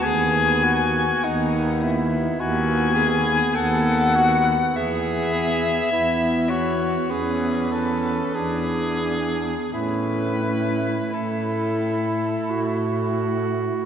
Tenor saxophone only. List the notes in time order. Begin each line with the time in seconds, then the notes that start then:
0.05 G#4
0.64 F#4
1.24 D#4
1.82 E4
2.40 F#4
2.95 G#4
3.55 A4
4.16 F#4
4.75 G#4
5.92 E4
6.50 F#4
7.11 G#4
7.72 A4
8.35 G#4
9.73 E4